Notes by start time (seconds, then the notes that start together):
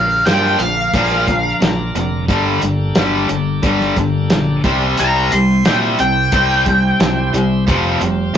Already playing: A#1 A#2 D3 F3 A#3 D4 F4 A#4 F5
0.25 G2 A#2 D3 F3 A#3 G5, snare, closed hi-hat
0.59 A#1 A#2 D3 F3 F5, closed hi-hat
0.94 A#1 A#2 D3 F3 A#3, kick, closed hi-hat
1.12 snare
1.28 A#2 D3 F3, kick, closed hi-hat
1.60 A#1 A#2 D3 F3, snare, closed hi-hat
1.95 F1 A#2 D3 F3, closed hi-hat
2.28 G1 G2 D3 G3 A#3 D4 G4 A4, kick, closed hi-hat
2.62 G1 G2 D3, closed hi-hat
2.95 G1 G2 D3 G3, snare, closed hi-hat
3.29 G1 G2 D3, closed hi-hat
3.63 G1 G2 D3 G3, kick, closed hi-hat
3.80 snare
3.97 G1 G2 D3, kick, closed hi-hat
4.30 A#1 G2 D3, snare, closed hi-hat
4.64 C2 C3 G3 C4 E4 G4 C5, kick, closed hi-hat
4.97 C2 C3 G3 C4 A#5, closed hi-hat
5.32 C2 C3 G3 C6, closed hi-hat
5.65 A#2 C3 G3 C4 G5, snare, closed hi-hat
5.99 C2 C3 G3 G5, closed hi-hat
6.32 C2 C3 G3 C4, kick, closed hi-hat
6.66 C3 G3, kick, closed hi-hat
7.00 C2 C3 G3, snare, closed hi-hat
7.33 C2 C3 G3, closed hi-hat
7.67 F1 F2 C3 F3 G3 C4 F4 G4 C5, kick, closed hi-hat
8.01 F1 F2 C3 F3 G3, closed hi-hat
8.34 F1 F3